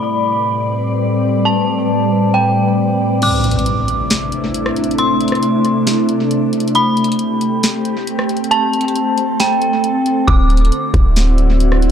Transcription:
Already playing: ambient pad A2 G3 C4 B4 D5, synth bell B5
1.45 synth bell A5
2.34 synth bell G5
3.22 ambient pad C3 A3 D4 E4, synth bell D6, closed hi-hat, crash, impact
3.44 closed hi-hat
3.51 closed hi-hat
3.59 closed hi-hat
3.66 closed hi-hat
3.88 closed hi-hat
4.10 snare, closed hi-hat
4.32 closed hi-hat
4.54 closed hi-hat
4.66 cross-stick
4.76 closed hi-hat
4.84 closed hi-hat
4.91 closed hi-hat
4.98 synth bell C6, closed hi-hat
5.21 closed hi-hat
5.28 closed hi-hat
5.32 cross-stick, closed hi-hat
5.43 closed hi-hat
5.65 closed hi-hat
5.87 snare, closed hi-hat
6.09 closed hi-hat
6.31 closed hi-hat
6.53 closed hi-hat
6.60 closed hi-hat
6.68 closed hi-hat
6.75 ambient pad C4 G4, synth bell B5, closed hi-hat
6.97 closed hi-hat
7.04 closed hi-hat
7.12 closed hi-hat
7.19 closed hi-hat
7.41 closed hi-hat
7.63 snare, closed hi-hat
7.85 closed hi-hat
8.07 closed hi-hat
8.19 cross-stick
8.29 closed hi-hat
8.37 closed hi-hat
8.44 closed hi-hat
8.51 ambient pad A4, synth bell A5, closed hi-hat
8.73 closed hi-hat
8.81 closed hi-hat
8.88 closed hi-hat
8.96 closed hi-hat
9.18 closed hi-hat
9.40 synth bell G5, snare, closed hi-hat
9.62 closed hi-hat
9.84 closed hi-hat
10.06 closed hi-hat
10.28 808-style bass D1, ambient pad D3 E4 F#4, synth bell D6, kick, closed hi-hat
10.50 closed hi-hat
10.57 closed hi-hat
10.65 closed hi-hat
10.72 closed hi-hat
10.94 808-style bass D1, kick, closed hi-hat
11.16 snare, closed hi-hat
11.38 closed hi-hat
11.60 closed hi-hat
11.72 cross-stick
11.82 closed hi-hat

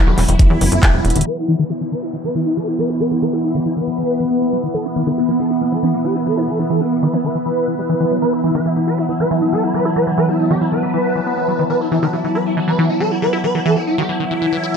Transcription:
Already playing: ambient pad E3 F#3 B3 E4 E5 B5
0.07 analog synth bass E1, acid bass D#3, digital synth lead G4
0.18 analog synth bass E1, acid bass E3, digital synth lead E4, clap, open hi-hat
0.29 analog synth bass E1, acid bass D#3, digital synth lead E4, closed hi-hat
0.39 acid bass E3, kick, closed hi-hat
0.50 analog synth bass E2, acid bass E3
0.61 analog synth bass F#1, acid bass E3, open hi-hat
0.72 analog synth bass F#1, acid bass E4, closed hi-hat
0.83 acid bass G3, kick, clap, closed hi-hat
0.94 analog synth bass E1, acid bass F#3
1.05 analog synth bass E1, acid bass E4, closed hi-hat
1.10 closed hi-hat
1.16 analog synth bass E1, acid bass D#3, closed hi-hat
1.21 closed hi-hat
1.26 ambient pad E3 B3, acid bass E3, digital synth lead B4, crash, downlifter
1.34 digital synth lead E4, ambient pad E5
1.39 ambient pad E4
1.48 acid bass E3, digital synth lead E4
1.59 acid bass D#3, digital synth lead B4, ambient pad B5
1.70 acid bass E3, digital synth lead E4
1.81 acid bass E3, digital synth lead E4
1.92 acid bass D#3, digital synth lead B4
2.02 digital synth lead E4
2.13 acid bass E3, digital synth lead E4
2.24 acid bass E3, digital synth lead B4
2.35 acid bass E3, digital synth lead E4
2.46 acid bass G3, digital synth lead E4
2.57 acid bass E3, digital synth lead A4
2.68 digital synth lead E4
2.79 acid bass E3, digital synth lead B4
2.89 digital synth lead E4, acid bass E4
3.00 acid bass E3, digital synth lead B4
3.11 acid bass E3, digital synth lead E4
3.22 acid bass E3, digital synth lead B4
3.33 acid bass G3, digital synth lead E4
3.44 digital synth lead E4
3.55 acid bass D#3, digital synth lead G4
3.66 acid bass E3, digital synth lead E4
3.76 acid bass D#3, digital synth lead B4
3.87 acid bass E3
3.98 acid bass E3
4.20 acid bass E3
4.31 acid bass B3
4.42 acid bass B3
4.53 acid bass F#3
4.63 acid bass D#3
4.74 acid bass E3, digital synth lead A4
4.85 digital synth lead B3
4.96 acid bass E3, digital synth lead B3
5.07 acid bass D#3, digital synth lead B4
5.18 acid bass E3, digital synth lead B3
5.29 acid bass E3, digital synth lead B3
5.39 acid bass D#3, digital synth lead A4
5.50 digital synth lead B3
5.61 acid bass E3, digital synth lead B3
5.72 acid bass E3, digital synth lead A4
5.83 acid bass E3, digital synth lead B3
5.94 acid bass G3, digital synth lead B3
6.05 acid bass E3, digital synth lead G4
6.16 digital synth lead B3
6.26 acid bass E3, digital synth lead A4
6.37 digital synth lead B3, acid bass E4
6.48 acid bass E3, digital synth lead A4
6.59 acid bass E3, digital synth lead B3
6.70 acid bass E3, digital synth lead A4
6.81 acid bass G3, digital synth lead B3
6.92 digital synth lead B3
7.02 acid bass D#3, digital synth lead B4
7.13 acid bass E3, digital synth lead B3
7.24 acid bass D#3, digital synth lead B4
7.35 acid bass E3
7.46 acid bass E3
7.68 acid bass E3
7.79 acid bass G3
7.89 acid bass E3
8.00 acid bass E3
8.07 acid bass F#3, ambient pad A5
8.22 acid bass E3, ambient pad F#3, digital synth lead B4
8.33 digital synth lead E4
8.44 acid bass E3, digital synth lead E4
8.55 acid bass D#3, digital synth lead B4
8.66 acid bass E3, digital synth lead E4
8.76 acid bass E3, digital synth lead E4
8.87 acid bass E4, digital synth lead B4
8.98 digital synth lead E4
9.09 acid bass E3, digital synth lead E4
9.20 acid bass E3, digital synth lead B4
9.31 acid bass E3, digital synth lead E4
9.42 acid bass G3, digital synth lead E4
9.52 acid bass E3, digital synth lead A4
9.63 digital synth lead E4
9.74 acid bass E3, digital synth lead B4
9.85 acid bass E4, digital synth lead E4
9.96 acid bass E3, digital synth lead B4
10.07 acid bass E3, digital synth lead E4
10.18 acid bass E3, digital synth lead B4
10.29 acid bass G3, digital synth lead E4
10.39 digital synth lead E4
10.50 acid bass D#3, digital synth lead G4
10.61 acid bass E3, digital synth lead E4
10.72 acid bass D#3, digital synth lead B4
10.83 acid bass E3
10.94 acid bass E3
11.15 acid bass E3
11.26 acid bass B3
11.37 acid bass B3
11.48 acid bass F#3
11.59 acid bass D#3
11.70 acid bass E3, digital synth lead B4
11.81 digital synth lead E4
11.92 acid bass E3, digital synth lead E4
12.02 acid bass D#3, digital synth lead B4
12.13 acid bass E3, digital synth lead E4
12.24 acid bass E3, digital synth lead E4
12.35 acid bass E4, digital synth lead B4
12.46 digital synth lead E4
12.57 acid bass E3, digital synth lead E4
12.68 acid bass E3, digital synth lead B4
12.79 acid bass E3, digital synth lead E4
12.89 acid bass G3, digital synth lead E4
13.00 acid bass E3, digital synth lead A4
13.11 digital synth lead E4
13.22 acid bass E3, digital synth lead B4
13.33 acid bass E4, digital synth lead E4
13.44 acid bass E3, digital synth lead B4
13.55 acid bass E3, digital synth lead E4
13.65 acid bass E3, digital synth lead A4
13.76 acid bass G3, digital synth lead E4
13.87 digital synth lead E4
13.98 acid bass D#3, digital synth lead G4
14.09 acid bass E3, digital synth lead E4
14.20 acid bass D#3, digital synth lead E4
14.31 acid bass E3
14.42 acid bass E3
14.53 acid bass E3
14.63 acid bass E4

